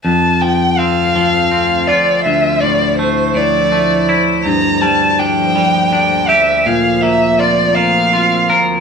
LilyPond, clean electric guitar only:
\new Staff \with { instrumentName = "Clean electric guitar" } { \time 6/8 \key f \major \tempo 4. = 54 f,8 f8 c'8 f8 c'8 f'8 | d,8 a,8 a8 a,8 a8 e'8 | g,8 g8 d'8 g8 d'8 g'8 | bes,8 bes8 f'8 bes8 f'8 bes'8 | }